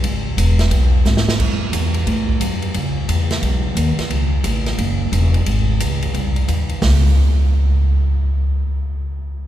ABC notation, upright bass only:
X:1
M:4/4
L:1/8
Q:"Swing" 1/4=177
K:C#m
V:1 name="Upright bass" clef=bass
G,,,2 E,,,2 B,,,2 G,,,2 | F,,2 E,,2 A,,2 F,,2 | C,,2 E,,2 B,,,2 D,, z | C,,2 A,,,2 F,,,2 E,,,2 |
G,,,2 C,,2 ^B,,,2 D,,2 | C,,8- | C,,8 |]